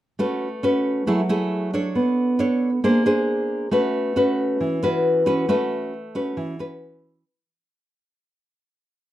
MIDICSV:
0, 0, Header, 1, 2, 480
1, 0, Start_track
1, 0, Key_signature, 3, "major"
1, 0, Tempo, 441826
1, 204, Time_signature, 4, 2, 24, 8
1, 9917, End_track
2, 0, Start_track
2, 0, Title_t, "Nylon-string guitar"
2, 0, Program_c, 0, 24
2, 205, Note_on_c, 0, 57, 63
2, 210, Note_on_c, 0, 61, 52
2, 212, Note_on_c, 0, 66, 48
2, 216, Note_on_c, 0, 71, 60
2, 514, Note_off_c, 0, 61, 0
2, 516, Note_off_c, 0, 66, 0
2, 518, Note_off_c, 0, 71, 0
2, 686, Note_on_c, 0, 61, 55
2, 694, Note_on_c, 0, 66, 50
2, 696, Note_on_c, 0, 71, 57
2, 1138, Note_off_c, 0, 57, 0
2, 1144, Note_off_c, 0, 61, 0
2, 1146, Note_off_c, 0, 66, 0
2, 1149, Note_off_c, 0, 71, 0
2, 1162, Note_on_c, 0, 54, 69
2, 1166, Note_on_c, 0, 57, 59
2, 1167, Note_on_c, 0, 64, 58
2, 1174, Note_on_c, 0, 68, 59
2, 1303, Note_off_c, 0, 57, 0
2, 1305, Note_off_c, 0, 64, 0
2, 1308, Note_off_c, 0, 68, 0
2, 1406, Note_on_c, 0, 57, 60
2, 1412, Note_on_c, 0, 64, 58
2, 1412, Note_on_c, 0, 68, 61
2, 1844, Note_off_c, 0, 57, 0
2, 1845, Note_off_c, 0, 64, 0
2, 1846, Note_off_c, 0, 68, 0
2, 1885, Note_on_c, 0, 62, 50
2, 1891, Note_on_c, 0, 69, 54
2, 1896, Note_on_c, 0, 73, 58
2, 2095, Note_off_c, 0, 54, 0
2, 2123, Note_on_c, 0, 59, 64
2, 2562, Note_off_c, 0, 62, 0
2, 2563, Note_off_c, 0, 69, 0
2, 2568, Note_off_c, 0, 73, 0
2, 2596, Note_on_c, 0, 62, 51
2, 2599, Note_on_c, 0, 69, 55
2, 2608, Note_on_c, 0, 73, 59
2, 2919, Note_off_c, 0, 62, 0
2, 2921, Note_off_c, 0, 69, 0
2, 2923, Note_off_c, 0, 73, 0
2, 3055, Note_off_c, 0, 59, 0
2, 3083, Note_on_c, 0, 58, 72
2, 3087, Note_on_c, 0, 62, 51
2, 3087, Note_on_c, 0, 68, 49
2, 3094, Note_on_c, 0, 72, 61
2, 3282, Note_off_c, 0, 62, 0
2, 3284, Note_off_c, 0, 68, 0
2, 3285, Note_off_c, 0, 72, 0
2, 3321, Note_on_c, 0, 62, 57
2, 3328, Note_on_c, 0, 68, 62
2, 3330, Note_on_c, 0, 72, 67
2, 4001, Note_off_c, 0, 62, 0
2, 4002, Note_off_c, 0, 68, 0
2, 4004, Note_off_c, 0, 72, 0
2, 4016, Note_off_c, 0, 58, 0
2, 4035, Note_on_c, 0, 57, 63
2, 4040, Note_on_c, 0, 61, 51
2, 4042, Note_on_c, 0, 66, 47
2, 4048, Note_on_c, 0, 71, 62
2, 4478, Note_off_c, 0, 61, 0
2, 4481, Note_off_c, 0, 66, 0
2, 4482, Note_off_c, 0, 71, 0
2, 4520, Note_on_c, 0, 61, 51
2, 4523, Note_on_c, 0, 66, 54
2, 4532, Note_on_c, 0, 71, 56
2, 4972, Note_off_c, 0, 57, 0
2, 5003, Note_on_c, 0, 52, 69
2, 5199, Note_off_c, 0, 61, 0
2, 5202, Note_off_c, 0, 66, 0
2, 5204, Note_off_c, 0, 71, 0
2, 5242, Note_on_c, 0, 61, 58
2, 5252, Note_on_c, 0, 71, 65
2, 5253, Note_on_c, 0, 66, 60
2, 5682, Note_off_c, 0, 61, 0
2, 5684, Note_off_c, 0, 66, 0
2, 5686, Note_off_c, 0, 71, 0
2, 5715, Note_on_c, 0, 61, 58
2, 5720, Note_on_c, 0, 66, 57
2, 5726, Note_on_c, 0, 71, 66
2, 5918, Note_off_c, 0, 61, 0
2, 5920, Note_off_c, 0, 66, 0
2, 5923, Note_off_c, 0, 71, 0
2, 5936, Note_off_c, 0, 52, 0
2, 5959, Note_on_c, 0, 57, 66
2, 5963, Note_on_c, 0, 61, 56
2, 5965, Note_on_c, 0, 66, 53
2, 5971, Note_on_c, 0, 71, 61
2, 6437, Note_off_c, 0, 61, 0
2, 6439, Note_off_c, 0, 66, 0
2, 6441, Note_off_c, 0, 71, 0
2, 6681, Note_on_c, 0, 61, 54
2, 6686, Note_on_c, 0, 66, 54
2, 6687, Note_on_c, 0, 71, 55
2, 6896, Note_off_c, 0, 57, 0
2, 6920, Note_on_c, 0, 52, 70
2, 7121, Note_off_c, 0, 61, 0
2, 7124, Note_off_c, 0, 71, 0
2, 7125, Note_off_c, 0, 66, 0
2, 7162, Note_on_c, 0, 61, 56
2, 7166, Note_on_c, 0, 66, 52
2, 7172, Note_on_c, 0, 71, 64
2, 7843, Note_off_c, 0, 61, 0
2, 7845, Note_off_c, 0, 66, 0
2, 7847, Note_off_c, 0, 71, 0
2, 7856, Note_off_c, 0, 52, 0
2, 9917, End_track
0, 0, End_of_file